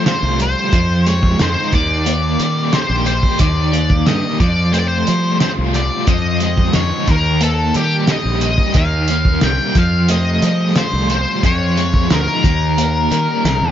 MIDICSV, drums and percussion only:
0, 0, Header, 1, 2, 480
1, 0, Start_track
1, 0, Tempo, 668896
1, 520, Time_signature, 4, 2, 24, 8
1, 9841, End_track
2, 0, Start_track
2, 0, Title_t, "Drums"
2, 43, Note_on_c, 9, 42, 78
2, 44, Note_on_c, 9, 38, 109
2, 115, Note_off_c, 9, 42, 0
2, 116, Note_off_c, 9, 38, 0
2, 284, Note_on_c, 9, 42, 55
2, 356, Note_off_c, 9, 42, 0
2, 521, Note_on_c, 9, 42, 75
2, 523, Note_on_c, 9, 36, 87
2, 593, Note_off_c, 9, 42, 0
2, 595, Note_off_c, 9, 36, 0
2, 764, Note_on_c, 9, 42, 56
2, 836, Note_off_c, 9, 42, 0
2, 882, Note_on_c, 9, 36, 81
2, 954, Note_off_c, 9, 36, 0
2, 1000, Note_on_c, 9, 42, 65
2, 1001, Note_on_c, 9, 38, 103
2, 1072, Note_off_c, 9, 42, 0
2, 1073, Note_off_c, 9, 38, 0
2, 1238, Note_on_c, 9, 42, 51
2, 1240, Note_on_c, 9, 36, 91
2, 1310, Note_off_c, 9, 42, 0
2, 1312, Note_off_c, 9, 36, 0
2, 1479, Note_on_c, 9, 42, 83
2, 1551, Note_off_c, 9, 42, 0
2, 1720, Note_on_c, 9, 42, 59
2, 1791, Note_off_c, 9, 42, 0
2, 1958, Note_on_c, 9, 42, 74
2, 1959, Note_on_c, 9, 38, 104
2, 2030, Note_off_c, 9, 38, 0
2, 2030, Note_off_c, 9, 42, 0
2, 2196, Note_on_c, 9, 42, 53
2, 2267, Note_off_c, 9, 42, 0
2, 2319, Note_on_c, 9, 36, 66
2, 2390, Note_off_c, 9, 36, 0
2, 2433, Note_on_c, 9, 42, 78
2, 2438, Note_on_c, 9, 36, 95
2, 2505, Note_off_c, 9, 42, 0
2, 2509, Note_off_c, 9, 36, 0
2, 2680, Note_on_c, 9, 42, 57
2, 2752, Note_off_c, 9, 42, 0
2, 2798, Note_on_c, 9, 36, 79
2, 2870, Note_off_c, 9, 36, 0
2, 2917, Note_on_c, 9, 42, 73
2, 2918, Note_on_c, 9, 38, 96
2, 2989, Note_off_c, 9, 42, 0
2, 2990, Note_off_c, 9, 38, 0
2, 3159, Note_on_c, 9, 36, 91
2, 3160, Note_on_c, 9, 42, 55
2, 3231, Note_off_c, 9, 36, 0
2, 3231, Note_off_c, 9, 42, 0
2, 3400, Note_on_c, 9, 42, 83
2, 3472, Note_off_c, 9, 42, 0
2, 3638, Note_on_c, 9, 42, 57
2, 3710, Note_off_c, 9, 42, 0
2, 3878, Note_on_c, 9, 42, 78
2, 3879, Note_on_c, 9, 38, 99
2, 3950, Note_off_c, 9, 42, 0
2, 3951, Note_off_c, 9, 38, 0
2, 4121, Note_on_c, 9, 42, 57
2, 4122, Note_on_c, 9, 38, 29
2, 4193, Note_off_c, 9, 42, 0
2, 4194, Note_off_c, 9, 38, 0
2, 4357, Note_on_c, 9, 42, 75
2, 4360, Note_on_c, 9, 36, 95
2, 4428, Note_off_c, 9, 42, 0
2, 4432, Note_off_c, 9, 36, 0
2, 4596, Note_on_c, 9, 42, 54
2, 4667, Note_off_c, 9, 42, 0
2, 4719, Note_on_c, 9, 36, 78
2, 4791, Note_off_c, 9, 36, 0
2, 4832, Note_on_c, 9, 38, 97
2, 4832, Note_on_c, 9, 42, 74
2, 4903, Note_off_c, 9, 42, 0
2, 4904, Note_off_c, 9, 38, 0
2, 5076, Note_on_c, 9, 42, 51
2, 5079, Note_on_c, 9, 36, 89
2, 5148, Note_off_c, 9, 42, 0
2, 5151, Note_off_c, 9, 36, 0
2, 5315, Note_on_c, 9, 42, 85
2, 5387, Note_off_c, 9, 42, 0
2, 5557, Note_on_c, 9, 42, 56
2, 5629, Note_off_c, 9, 42, 0
2, 5794, Note_on_c, 9, 42, 82
2, 5795, Note_on_c, 9, 38, 97
2, 5866, Note_off_c, 9, 38, 0
2, 5866, Note_off_c, 9, 42, 0
2, 6035, Note_on_c, 9, 42, 58
2, 6107, Note_off_c, 9, 42, 0
2, 6157, Note_on_c, 9, 36, 74
2, 6229, Note_off_c, 9, 36, 0
2, 6270, Note_on_c, 9, 42, 70
2, 6277, Note_on_c, 9, 36, 94
2, 6342, Note_off_c, 9, 42, 0
2, 6349, Note_off_c, 9, 36, 0
2, 6513, Note_on_c, 9, 42, 62
2, 6585, Note_off_c, 9, 42, 0
2, 6639, Note_on_c, 9, 36, 77
2, 6710, Note_off_c, 9, 36, 0
2, 6755, Note_on_c, 9, 42, 76
2, 6756, Note_on_c, 9, 38, 99
2, 6827, Note_off_c, 9, 38, 0
2, 6827, Note_off_c, 9, 42, 0
2, 6998, Note_on_c, 9, 42, 60
2, 6999, Note_on_c, 9, 36, 92
2, 7070, Note_off_c, 9, 42, 0
2, 7071, Note_off_c, 9, 36, 0
2, 7237, Note_on_c, 9, 42, 91
2, 7309, Note_off_c, 9, 42, 0
2, 7479, Note_on_c, 9, 42, 61
2, 7551, Note_off_c, 9, 42, 0
2, 7719, Note_on_c, 9, 38, 107
2, 7719, Note_on_c, 9, 42, 85
2, 7790, Note_off_c, 9, 42, 0
2, 7791, Note_off_c, 9, 38, 0
2, 7963, Note_on_c, 9, 42, 57
2, 8035, Note_off_c, 9, 42, 0
2, 8205, Note_on_c, 9, 36, 98
2, 8206, Note_on_c, 9, 42, 70
2, 8277, Note_off_c, 9, 36, 0
2, 8278, Note_off_c, 9, 42, 0
2, 8449, Note_on_c, 9, 42, 54
2, 8521, Note_off_c, 9, 42, 0
2, 8566, Note_on_c, 9, 36, 79
2, 8638, Note_off_c, 9, 36, 0
2, 8686, Note_on_c, 9, 42, 68
2, 8687, Note_on_c, 9, 38, 95
2, 8758, Note_off_c, 9, 38, 0
2, 8758, Note_off_c, 9, 42, 0
2, 8928, Note_on_c, 9, 36, 87
2, 8930, Note_on_c, 9, 42, 56
2, 9000, Note_off_c, 9, 36, 0
2, 9002, Note_off_c, 9, 42, 0
2, 9171, Note_on_c, 9, 42, 76
2, 9243, Note_off_c, 9, 42, 0
2, 9412, Note_on_c, 9, 42, 55
2, 9483, Note_off_c, 9, 42, 0
2, 9654, Note_on_c, 9, 42, 72
2, 9655, Note_on_c, 9, 38, 107
2, 9726, Note_off_c, 9, 38, 0
2, 9726, Note_off_c, 9, 42, 0
2, 9841, End_track
0, 0, End_of_file